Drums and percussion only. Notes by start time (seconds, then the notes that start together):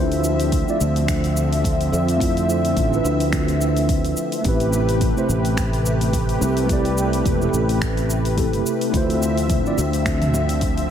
0.12 open hi-hat, shaker
0.24 shaker
0.40 open hi-hat, shaker
0.52 kick, open hi-hat, shaker
0.68 shaker
0.81 shaker
0.96 open hi-hat, shaker
1.08 finger snap, kick, open hi-hat, shaker
1.24 open hi-hat, shaker
1.37 shaker
1.53 open hi-hat, shaker
1.64 kick, open hi-hat, shaker
1.81 open hi-hat, shaker
1.94 shaker
2.08 open hi-hat, shaker
2.20 kick, open hi-hat, shaker
2.37 open hi-hat, shaker
2.50 shaker
2.65 open hi-hat, shaker
2.77 kick, open hi-hat, shaker
2.93 shaker
3.05 shaker
3.20 open hi-hat, shaker
3.33 finger snap, kick, open hi-hat, shaker
3.48 open hi-hat, shaker
3.61 shaker
3.77 open hi-hat, shaker
3.89 kick, open hi-hat, shaker
4.05 open hi-hat, shaker
4.17 shaker
4.32 open hi-hat, shaker
4.44 kick, open hi-hat, shaker
4.60 open hi-hat, shaker
4.73 shaker
4.89 open hi-hat, shaker
5.01 kick, open hi-hat, shaker
5.17 shaker
5.30 shaker
5.45 open hi-hat, shaker
5.57 finger snap, kick, open hi-hat, shaker
5.73 open hi-hat, shaker
5.86 shaker
6.01 open hi-hat, shaker
6.13 kick, open hi-hat, shaker
6.29 open hi-hat, shaker
6.42 shaker
6.57 open hi-hat, shaker
6.69 kick, open hi-hat, shaker
6.85 open hi-hat, shaker
6.98 shaker
7.13 open hi-hat, shaker
7.25 kick, open hi-hat, shaker
7.42 shaker
7.54 shaker
7.69 open hi-hat, shaker
7.82 finger snap, kick, open hi-hat, shaker
7.97 open hi-hat, shaker
8.10 shaker
8.25 open hi-hat, shaker
8.38 kick, open hi-hat, shaker
8.53 open hi-hat, shaker
8.66 shaker
8.81 open hi-hat, shaker
8.94 kick, open hi-hat, shaker
9.10 open hi-hat, shaker
9.23 shaker
9.38 open hi-hat, shaker
9.50 kick, mid tom, open hi-hat, shaker
9.66 shaker
9.78 shaker
9.93 open hi-hat, shaker
10.06 finger snap, kick, open hi-hat, shaker
10.22 mid tom, open hi-hat, shaker
10.34 high bongo, shaker
10.49 open hi-hat, shaker
10.61 kick, open hi-hat, shaker
10.78 open hi-hat, shaker